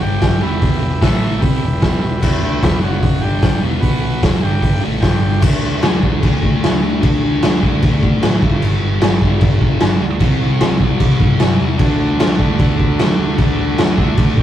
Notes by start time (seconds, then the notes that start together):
0.01 G1 G2 D3 G3 G4 D5 G5
0.21 kick, snare, open hi-hat
0.42 E1 E2 B2 E3 G4 B4 E5
0.62 kick, open hi-hat
0.81 E1 E2 B2
1.01 A1 A2 E3 A3 E4 A4 E5, kick, snare, open hi-hat
1.40 C2 C3 G3 C4 G4 B4 E5, kick, open hi-hat
1.62 E1 E2 B2
1.80 E1 E2 B2 E3, kick, snare, open hi-hat
2.02 E1 E2 B2
2.22 E1 E2 B2 E3, kick, crash
2.42 D2 D3 A3 D4
2.62 E1 E2 B2 E3, kick, snare, open hi-hat
2.82 F#1 F#2 C#3 F#3 F#4 C#5 F#5
3.03 kick, open hi-hat
3.21 G1 G2 D3 G4 D5 G5
3.25 G3
3.42 kick, snare, open hi-hat
3.62 E1 E2 B2 E3
3.80 B1 B2 F#3 B3 F#4 B4 F#5, kick, open hi-hat
4.23 E1 E2 B2 E3, kick, snare, open hi-hat
4.42 G1 G2 D3 G3 G4 D5 G5
4.62 kick, open hi-hat
4.82 A1 A2 E3 A3
5.01 G1 G2 D3 G3 G4 D5 G5, kick, snare, open hi-hat
5.41 D2 D3 A3, kick, crash
5.46 D4
5.63 D2
5.82 D2, snare, crash
6.01 D2 A3 D4, kick
6.06 D3
6.23 D2, kick, crash
6.43 D2, kick
6.63 D2, snare, crash
6.84 D2
7.01 D2 D3 A3, kick, crash
7.06 D4
7.24 D2
7.42 D2, snare, crash
7.61 D2 A3 D4, kick
7.66 D3
7.82 D2, kick, crash
8.03 A2, kick
8.23 A2, snare, crash
8.41 G1 G2 D3, kick
8.46 G3
8.62 G1, crash
8.82 G1
9.00 G1 G2 D3, snare, crash
9.06 G3
9.22 G1, kick
9.41 G1, kick, crash
9.61 G1, kick
9.80 G1, snare, crash
10.01 D2
10.19 C2 C3 G3, kick, crash
10.24 C4
10.40 C2
10.60 C2, snare, crash
10.79 C2 G3 C4, kick
10.84 C3
11.00 C2, kick, crash
11.20 G2, kick
11.40 G2, snare, crash
11.60 E2
11.78 D2 D3 A3 A4 D5 F#5, kick, crash
11.84 D4
12.01 D2
12.20 D2, snare, crash
12.37 D2 A3 D4, kick
12.43 D3
12.59 D2, kick, crash
12.79 D2, kick
12.99 D2, snare, crash
13.18 D2
13.36 D2 D3 A3, kick, crash
13.41 D4
13.57 D2
13.78 D2, snare, crash
13.96 D2 A3 D4, kick
14.00 D3 E5
14.17 D2 F#5, kick, crash
14.37 A2 G5, kick